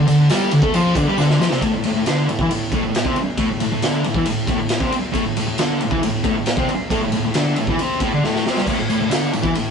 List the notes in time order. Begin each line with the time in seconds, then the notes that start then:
0.07 D3, ride, tambourine
0.19 D3
0.29 G3 G4, snare, ride, tambourine
0.51 D3, ride
0.62 A3 A4, kick
0.74 F3 F4, ride, tambourine
0.95 D3 D4, kick, ride, tambourine
1.07 G3 G4
1.18 D3 D4, snare, tambourine
1.30 snare
1.40 F3 F4, snare, tambourine
1.50 C3 C4, snare
1.61 A2 A3, kick, ride
1.74 A2
1.84 A2, ride
1.96 A2
2.06 D3 D4, snare, ride
2.29 A2, ride
2.39 E3 E4, kick
2.51 A2, ride
2.72 A2 A3, kick, ride
2.84 A2
2.95 snare, ride
3.05 C3 C4, kick
3.16 muted distorted electric guitar stroke, ride
3.38 A2 A3, kick, ride
3.50 A2
3.60 A2, ride
3.72 A2
3.82 D3 D4, snare, ride
4.04 A2, ride
4.14 E3 E4, kick
4.26 A2, ride
4.47 A2 A3, kick, ride
4.59 A2
4.69 snare, ride
4.80 C3 C4, kick
4.91 muted distorted electric guitar stroke, ride
5.13 A2 A3, kick, ride
5.25 A2
5.37 A2, ride
5.47 A2
5.58 D3 D4, snare, ride
5.81 A2, ride
5.91 E3 E4, kick
6.03 A2, ride
6.24 A2 A3, kick, ride
6.35 A2
6.46 snare, ride
6.57 C3 C4, kick
6.69 muted distorted electric guitar stroke, ride
6.90 A2 A3, kick, ride
7.02 A2
7.12 A2, ride
7.25 A2
7.34 D3 D4, snare, ride
7.56 A2, ride
7.67 E3 E4, kick
7.79 C3 C4, ride
8.00 A2 A3, kick, ride
8.14 D3 D4
8.24 A2 A3, snare
8.36 snare
8.46 C3 C4, snare
8.57 G2 G3, snare
8.67 A2 A3, kick, tambourine, crash
8.79 A2
8.90 A2, ride, tambourine
9.01 A2
9.10 D3 D4, snare, ride, tambourine
9.33 A2, ride, tambourine
9.43 E3 E4, kick
9.55 A2, ride